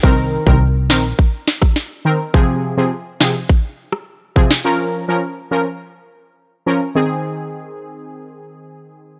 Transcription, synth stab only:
\new Staff \with { instrumentName = "Synth stab" } { \time 4/4 \key aes \major \tempo 4 = 104 <ees c' bes'>8. <ees c' bes'>16 r8 <ees c' bes'>16 r4. r16 <ees c' bes'>16 r16 | <c f c' aes'>8. <c f c' aes'>16 r8 <c f c' aes'>16 r4. r16 <c f c' aes'>16 r16 | <f des' bes'>8. <f des' bes'>16 r8 <f des' bes'>16 r4. r16 <f des' bes'>16 r16 | <ees c' aes'>1 | }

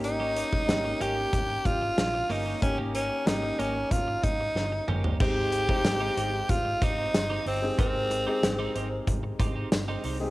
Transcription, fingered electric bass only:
\new Staff \with { instrumentName = "Fingered electric bass" } { \clef bass \time 4/4 \key aes \major \tempo 4 = 93 aes,,4 aes,,8 aes,,8 aes,,8 aes,,8 bes,,8 g,,8 | aes,,4 aes,,8 aes,,8 aes,,8 aes,,8 g,,8 g,,8 | aes,,4 aes,,8 aes,,8 aes,,8 aes,,8 g,,8 g,,8 | aes,,4 aes,,8 aes,,8 aes,,8 aes,,8 g,,8 c,8 | }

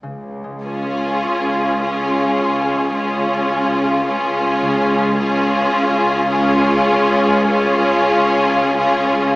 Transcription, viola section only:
\new Staff \with { instrumentName = "Viola section" } { \time 4/4 \key des \major \tempo 4 = 52 r8 des'4 des'4 des'4 des'8~ | des'8 des'4 des'4 des'4 des'8 | }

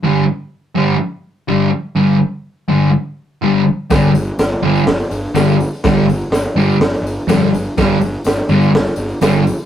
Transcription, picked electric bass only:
\new Staff \with { instrumentName = "Picked electric bass" } { \clef bass \time 4/4 \key c \dorian \tempo 4 = 124 r1 | r1 | g,,8 g,,8 g,,8 g,,8 g,,8 g,,8 g,,4 | g,,8 g,,8 g,,8 g,,8 g,,8 g,,8 f,8 g,,8 |
g,,8 g,,8 g,,8 g,,8 g,,8 g,,8 g,,4 | }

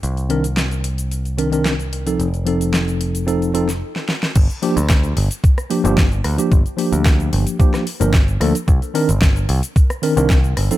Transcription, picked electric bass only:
\new Staff \with { instrumentName = "Picked electric bass" } { \clef bass \time 4/4 \key g \minor \tempo 4 = 111 c,1 | f,,2. r4 | g,,16 r8 d,8. g,,16 r4 g,,8. d,16 r16 | g,,16 r8 d,8. g,,16 r4 g,,8. d,16 r16 |
c,16 r8 g,,8. c,16 r4 c,8. g,,16 r16 | }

